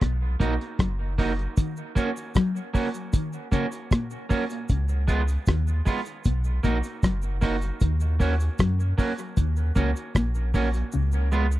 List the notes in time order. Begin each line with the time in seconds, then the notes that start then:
0.01 B1 B2, kick, cross-stick, closed hi-hat
0.40 A#1 A#2 A#3 D#4 F#4, kick, closed hi-hat
0.61 closed hi-hat
0.79 F#1 F#2, kick, cross-stick, closed hi-hat
1.18 A#3 D#4 F#4, kick, open hi-hat
1.39 closed hi-hat
1.57 D#3, kick, closed hi-hat, cabasa
1.77 cabasa
1.95 A#3 C#4 F#4, kick, closed hi-hat, cabasa
2.17 closed hi-hat, cabasa
2.35 F#3, kick, cross-stick, closed hi-hat, cabasa
2.56 cabasa
2.74 A#3 C#4 F#4, kick, open hi-hat, cabasa
2.94 closed hi-hat, cabasa
3.13 D#3, kick, closed hi-hat, cabasa
3.33 cabasa
3.52 C#3 A#3 C#4 F#4, kick, closed hi-hat, cabasa
3.72 closed hi-hat, cabasa
3.91 A#2, kick, cross-stick, closed hi-hat, cabasa
4.11 cabasa
4.29 A#3 C#4 F#4, kick, open hi-hat, cabasa
4.50 closed hi-hat, cabasa
4.69 C#2 C#3, kick, closed hi-hat, cabasa
4.89 cabasa
5.08 G#3 B3 F4, kick, closed hi-hat, cabasa
5.28 closed hi-hat, cabasa
5.46 D#2 D#3, kick, cross-stick, closed hi-hat, cabasa
5.67 cabasa
5.85 G#3 B3 F4, kick, open hi-hat, cabasa
6.06 closed hi-hat, cabasa
6.24 B1 B2, kick, closed hi-hat, cabasa
6.44 cabasa
6.63 A#1 A#2 A#3 D#4 F#4, kick, closed hi-hat, cabasa
6.83 closed hi-hat, cabasa
7.03 F#1 F#2, kick, cross-stick, closed hi-hat, cabasa
7.22 cabasa
7.41 A#3 D#4 F#4, kick, cross-stick, open hi-hat, cabasa
7.62 closed hi-hat, cabasa
7.81 D#2 D#3, kick, closed hi-hat, cabasa
8.00 cabasa
8.20 A#3 C#4 F#4, kick, open hi-hat, cabasa
8.40 closed hi-hat, cabasa
8.59 F#2 F#3, kick, cross-stick, closed hi-hat, cabasa
8.80 cabasa
8.98 A#3 C#4 F#4, kick, open hi-hat, cabasa
9.18 closed hi-hat, cabasa
9.37 D#2 D#3, kick, closed hi-hat, cabasa
9.56 cabasa
9.75 C#2 C#3 A#3 C#4 F#4, kick, closed hi-hat, cabasa
9.96 closed hi-hat, cabasa
10.15 A#1 A#2, kick, cross-stick, closed hi-hat, cabasa
10.35 cabasa
10.54 A#3 C#4 F#4, kick, open hi-hat, cabasa
10.74 closed hi-hat, cabasa
10.92 C#2 C#3, cabasa
11.12 cabasa
11.32 G#3 B3 F4, cabasa
11.52 cabasa